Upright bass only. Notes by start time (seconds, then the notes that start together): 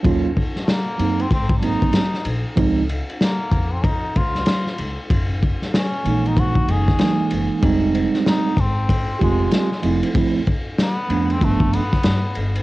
0.05 D#2
0.99 F#2
1.31 G#1
1.82 G#1
2.25 A#1
2.57 C#2
3.52 F2
4.16 C#2
4.79 C#2
5.10 F#1
6.05 A#1
6.68 F#1
7.31 F#1
7.63 F1
8.57 G#1
9.21 F1
9.84 F1
10.15 D2
11.10 F2
11.42 G1
11.60 G1
11.73 G2
12.05 G2
12.36 G1